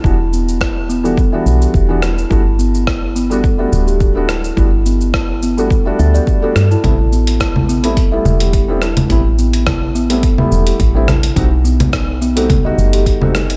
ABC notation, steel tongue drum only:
X:1
M:4/4
L:1/16
Q:"Swing 16ths" 1/4=106
K:G
V:1 name="Steel tongue drum"
E z B,2 E2 B, A2 e z G2 D E2 | E z B,2 E2 B, A2 e z G2 D E2 | E z B,2 E2 B, A2 e e d z A F E | E z B,2 E2 B, A2 e z G2 D E2 |
E z B,2 E2 B, A2 e z G2 D E2 | ^D z B,2 D2 B, A2 ^d z G2 D D2 |]